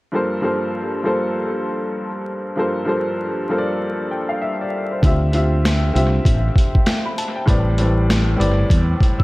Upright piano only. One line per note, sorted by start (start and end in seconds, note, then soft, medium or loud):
0.12 0.39 G2 medium
0.12 0.39 F3 medium
0.12 0.40 A#3 medium
0.12 0.40 A4 medium
0.12 0.41 C5 medium
0.41 0.95 G2 medium
0.41 0.95 F3 medium
0.41 0.96 A#3 medium
0.41 0.96 A4 medium
0.41 0.97 C5 medium
1.03 2.06 G2 medium
1.03 2.07 F3 medium
1.03 2.07 A#3 medium
1.03 2.07 A4 medium
1.03 2.08 C5 medium
2.56 2.83 G2 medium
2.56 2.84 F3 medium
2.56 2.84 A#3 medium
2.56 2.84 A4 medium
2.56 2.85 C5 medium
2.85 3.39 G2 medium
2.85 3.40 F3 medium
2.85 3.40 A#3 medium
2.85 3.41 A4 medium
2.85 3.41 C5 medium
3.48 4.51 G2 medium
3.48 4.52 F3 medium
3.48 4.52 A#3 medium
3.48 4.53 A4 medium
3.48 3.59 C5 medium
3.58 4.15 D5 medium
4.11 4.29 G5 medium
4.29 4.41 F5 medium
4.42 4.59 E5 medium
4.61 4.90 D5 medium
4.91 5.20 C5 medium
5.02 5.29 D3 medium
5.02 5.29 C4 medium
5.02 5.29 F4 medium
5.02 5.30 G4 medium
5.02 5.30 E5 loud
5.32 5.85 D3 medium
5.32 5.86 C4 medium
5.32 5.86 F4 medium
5.32 5.87 G4 medium
5.32 5.87 E5 medium
5.93 6.96 D3 medium
5.93 6.96 C4 medium
5.93 6.97 F4 medium
5.93 6.97 G4 medium
5.93 6.98 E5 medium
7.05 7.17 B5 medium
7.18 7.35 A5 medium
7.36 7.65 G5 medium
7.45 7.73 A2 medium
7.45 7.73 G3 medium
7.45 7.74 C4 medium
7.45 7.74 B4 medium
7.45 7.75 D5 medium
7.78 8.31 A2 medium
7.78 8.31 G3 medium
7.78 8.32 C4 medium
7.78 8.32 B4 medium
7.78 8.33 D5 medium
8.36 9.23 A2 medium
8.36 9.23 G3 medium
8.36 9.23 C4 medium
8.36 9.23 B4 medium
8.36 9.23 D5 loud
9.19 9.23 E6 medium